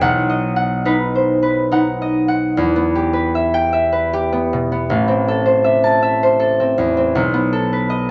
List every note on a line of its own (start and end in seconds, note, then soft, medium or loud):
0.00 2.60 B1 medium
0.00 0.84 B4 medium
0.00 0.55 F#5 medium
0.30 2.00 D#5 medium
0.56 1.71 F#5 medium
0.85 1.70 D#4 medium
0.85 1.41 B4 medium
1.15 1.63 C5 soft
1.43 3.12 B4 medium
1.71 2.59 D#4 medium
1.71 2.27 F#5 medium
2.02 2.59 D#5 soft
2.28 2.59 F#5 medium
2.57 4.93 E2 medium
2.76 4.31 B3 medium
2.95 4.12 G4 medium
3.13 3.91 B4 medium
3.35 3.71 E5 medium
3.54 4.93 G5 medium
3.73 5.63 E5 medium
3.92 4.93 B4 medium
4.13 4.94 G4 medium
4.33 4.71 B3 medium
4.53 4.94 B2 medium
4.72 4.93 B3 soft
4.90 7.18 A1 medium
5.08 6.59 C4 medium
5.28 6.38 A4 medium
5.46 6.22 C5 medium
5.64 6.01 E5 medium
5.84 8.08 A5 medium
6.02 7.18 E5 medium
6.23 7.19 C5 medium
6.40 7.51 A4 medium
6.60 6.96 C4 soft
6.78 7.18 E2 soft
6.97 7.18 C4 soft
7.15 8.11 B1 medium
7.34 8.11 B3 medium
7.53 8.11 A4 medium
7.73 8.11 B4 soft
7.90 8.11 D#5 medium